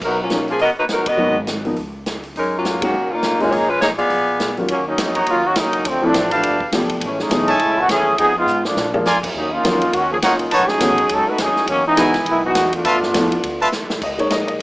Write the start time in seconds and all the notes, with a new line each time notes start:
0.01 B1 F#3 B3 D#4 A#4, kick, crash
0.22 F#3 A#3 C#4 F4
0.30 F#3 A#3 C#4 D#4, snare, closed hi-hat
0.48 F3 A#3 C#4 G#4, open hi-hat
0.59 F#1 B3 F#4 A#4 D#5, open hi-hat
0.78 F#3 A#3 D#4 B4
0.89 F#3 B3 D#4 A#4, snare, closed hi-hat
1.06 B3 F#4 A#4 D#5, kick, ride
1.17 G#1 F#3 A#3 B3 D#4
1.47 snare, closed hi-hat
1.65 F3 A#3 B3 D#4, open hi-hat
1.76 C#2, open hi-hat
2.06 snare, closed hi-hat
2.23 open hi-hat
2.36 F#2 G#3 C#4 D#4 A#4, open hi-hat
2.57 F#3 A#3 C#4 F4
2.65 snare, closed hi-hat
2.82 D#3 G#3 A#3 C#4 D#4 F#4, kick, ride
2.94 C#2
3.12 A#3 C#4 D#4 F4
3.22 G2, snare, closed hi-hat
3.40 G#3 A#3 C#4 D#4 F4, open hi-hat
3.51 A#1 A#3 D#4 G#4 C#5, open hi-hat
3.68 G#3 C#4 F4 B4
3.81 A#3 D#4 G#4 C#5, snare, closed hi-hat
3.97 B3 F4 G#4 D5, open hi-hat
4.10 A#1, open hi-hat
4.40 A#2, snare, closed hi-hat
4.57 D#2 F#3 A#3 C#4 F4, open hi-hat
4.68 D#2 D#3 F#3 A#3 C#4, ride
4.87 F#3 A#3 C#4 D#4
4.98 F2, snare, hi-hat pedal, ride
5.15 F#4 C#5 D#5 A#5, ride
5.26 D#2 F#3 A#3 C#4 F4, ride
5.45 D#3 A#3 C#4 F#4
5.56 C#2 F#3 A#3 C#4 D#4, snare, hi-hat pedal, ride
5.73 ride
5.85 D2 D3 F3 A3 C4, ride
6.02 F3 A3 C4 D4 E4
6.14 A1, snare, hi-hat pedal, ride
6.31 F3 A3 B3 D4 G4 B4 F5 A5, ride
6.43 G1, ride
6.60 kick
6.72 F1 F3 A3 B3 D4 G4, snare, hi-hat pedal, ride
6.89 ride
7.00 A1 E3 G#3 A3 C#4, ride
7.19 G#3 A3 C#4 D#4, snare
7.30 B1 E3 A3 B3 C#4 G#4, snare, hi-hat pedal, ride
7.47 C#5 E5 G#5 A5, ride
7.59 C#2 G#3 A3 C#4 E4, ride
7.79 D#3 G#3 B3 F#4
7.88 D#2 E3 A3 C#4 G#4, snare, hi-hat pedal, ride
8.18 F2 F3 B3 D#4 G#4, ride
8.37 G#3 B3 D#4 F4
8.46 G#2, hi-hat pedal
8.65 F3 G#3 A#3 D4, snare
8.76 A#2, snare
8.94 F3 G#3 A#3 D4 F4, floor tom
9.05 F2 F4 A#4 D5 G#5, snare, hi-hat pedal
9.23 kick, crash
9.34 D#2 F#3 A#3 C#4 D#4
9.51 A#3 C#4 D#4 F4
9.64 F2 D#3 F#3 A#3 C#4 F4, snare, hi-hat pedal, ride
9.81 ride
9.93 D#2 D#3 A#3 C#4 F#4, ride
10.11 F3 A#3 C#4 G#4
10.22 C#2 A#3 C#4 D#4 F4 A#4 C#5 F#5, snare, hi-hat pedal, ride
10.39 ride
10.51 B1 D#3 A3 C#4 D#4 F#4 B4 C#5 A5, ride
10.68 F#3 C#4 D#4 G#4, muted upright bass stroke, snare
10.79 A1 D#3 A3 B3 C#4 F#4, snare, hi-hat pedal, ride
10.98 ride
11.09 C#2 F#3 C#4 D#4 A4, ride
11.28 A3 D#4 F#4 B4
11.38 D#2 F#3 C#4 D#4 G#4, snare, hi-hat pedal, ride
11.56 muted upright bass stroke, snare
11.67 E2 D#3 F#3 A#3 C#4, ride
11.86 E3 G#3 B3 D#4
11.96 C#2 E3 G#3 B3 D#4 E4 F#4 B4 D#5 G#5, snare, hi-hat pedal, ride
12.14 snare, ride
12.25 B1 D#3 G#3 B3 E4, ride
12.45 E3 B3 D#4 F#4
12.55 E2, snare, hi-hat pedal, ride
12.73 A3 B3 D4 F4, ride
12.85 G2 F4 B4 E5 A5, ride
13.03 snare
13.13 F2 F3 A3 B3 D4 E4, snare, hi-hat pedal, ride
13.32 ride
13.43 D2, ride
13.61 F4 B4 E5 A5
13.72 E2, snare, hi-hat pedal
13.82 D2
13.90 B1, snare
14.01 C#2 D#5, kick, crash
14.18 G#3 A#3 D#4 C#5, ride
14.30 A#1 D#5, snare, hi-hat pedal, ride
14.48 D#5, ride
14.59 G#1